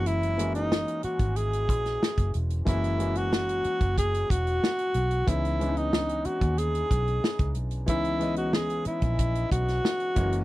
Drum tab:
HH |xxxx-xxxxxxx-xxx|xxxx-xxxxxxx-xxx|xxxx-xxxxxxx-xxx|xxxx-xxxxxxx-xxx|
SD |----o------oo---|----o-------o---|----o-------o---|----o------oo---|
BD |-------o--o--o--|o------oo-o-----|o------o--o--o--|o------oo-o---o-|